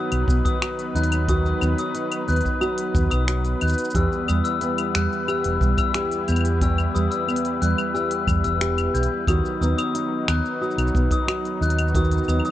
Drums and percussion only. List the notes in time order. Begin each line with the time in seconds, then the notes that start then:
0.12 open hi-hat, claves
0.28 kick, shaker
0.45 kick, open hi-hat, shaker
0.62 finger snap, open hi-hat, claves, shaker
0.79 open hi-hat, shaker
0.96 open hi-hat, shaker
1.04 open hi-hat
1.12 open hi-hat, claves, shaker
1.28 kick, open hi-hat, shaker
1.46 shaker
1.61 claves, shaker
1.78 open hi-hat, shaker
1.95 open hi-hat, shaker
2.12 open hi-hat, claves, shaker
2.28 open hi-hat, shaker
2.32 open hi-hat
2.36 open hi-hat
2.41 open hi-hat
2.46 kick, shaker
2.61 claves, shaker
2.78 open hi-hat
2.95 kick, shaker
3.11 open hi-hat, claves, shaker
3.28 finger snap, open hi-hat, shaker
3.45 open hi-hat, shaker
3.61 open hi-hat, claves, shaker
3.68 open hi-hat, shaker
3.73 shaker
3.78 open hi-hat, shaker
3.84 shaker
3.90 shaker
3.95 kick, open hi-hat, shaker
4.12 shaker
4.28 claves, shaker
4.45 open hi-hat, shaker
4.61 open hi-hat, shaker
4.78 open hi-hat, claves
4.95 finger snap, open hi-hat, shaker
5.12 shaker
5.28 claves, shaker
5.44 open hi-hat
5.61 kick, shaker
5.78 kick, open hi-hat, claves, shaker
5.94 finger snap, open hi-hat, shaker
6.12 open hi-hat, shaker
6.28 open hi-hat, claves, shaker
6.32 claves
6.36 open hi-hat, claves
6.41 claves
6.45 open hi-hat, shaker
6.61 kick, open hi-hat, shaker
6.78 claves, shaker
6.96 shaker
7.12 open hi-hat, shaker
7.29 claves, shaker
7.36 open hi-hat
7.45 open hi-hat
7.62 open hi-hat, shaker
7.78 claves, shaker
7.95 shaker
8.11 open hi-hat
8.27 kick, claves, shaker
8.44 open hi-hat, shaker
8.61 finger snap, open hi-hat, shaker
8.78 open hi-hat, claves, shaker
8.95 open hi-hat, shaker
9.03 open hi-hat
9.27 kick, open hi-hat, claves, shaker
9.46 shaker
9.62 shaker
9.79 open hi-hat, claves, shaker
9.95 open hi-hat, shaker
10.28 finger snap, open hi-hat, claves, shaker
10.45 shaker
10.63 shaker
10.71 shaker
10.78 open hi-hat, claves, shaker
10.87 shaker
10.95 kick, shaker
11.11 kick, open hi-hat, shaker
11.28 finger snap, open hi-hat, claves, shaker
11.45 open hi-hat, shaker
11.62 shaker
11.70 open hi-hat
11.79 open hi-hat, claves, shaker
11.88 shaker
11.95 kick, open hi-hat, shaker
12.04 shaker
12.11 open hi-hat, shaker
12.18 shaker
12.23 shaker
12.28 claves, shaker
12.40 claves
12.45 open hi-hat, shaker